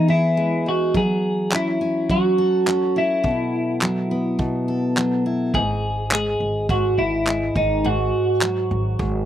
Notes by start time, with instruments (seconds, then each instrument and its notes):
Already playing: steel-string acoustic guitar E3 G#3 B3
0.08 clean electric guitar E4, steel-string acoustic guitar G#4
0.37 steel-string acoustic guitar G#3
0.66 steel-string acoustic guitar D#4, clean electric guitar F#4
0.94 steel-string acoustic guitar F#3, clean electric guitar G#4, kick
1.52 steel-string acoustic guitar C#4, clean electric guitar E4, clap
1.81 steel-string acoustic guitar C#4
2.10 steel-string acoustic guitar F#3, clean electric guitar F#4, kick
2.38 steel-string acoustic guitar A4
2.67 steel-string acoustic guitar C#4, clap
2.96 steel-string acoustic guitar E4, clean electric guitar E4
3.24 steel-string acoustic guitar B2, kick
3.82 steel-string acoustic guitar F#3, clap
4.11 steel-string acoustic guitar B3
4.39 steel-string acoustic guitar B2, kick
4.68 steel-string acoustic guitar A4
4.96 steel-string acoustic guitar F#3, clap
5.26 steel-string acoustic guitar E4
5.54 upright bass G#1, steel-string acoustic guitar G#2, clean electric guitar G#4, kick
6.11 steel-string acoustic guitar G#3, clean electric guitar G#4, clap
6.40 upright bass G#1
6.69 steel-string acoustic guitar G#2, clean electric guitar F#4, kick
6.98 upright bass G#1, clean electric guitar E4
7.27 steel-string acoustic guitar G#3, clap
7.55 upright bass G#1, steel-string acoustic guitar G#2, clean electric guitar D#4, kick
7.84 steel-string acoustic guitar G#2, clean electric guitar F#4
8.42 steel-string acoustic guitar F#3, clap
8.71 upright bass G#1
8.99 upright bass G#1, steel-string acoustic guitar G#2, kick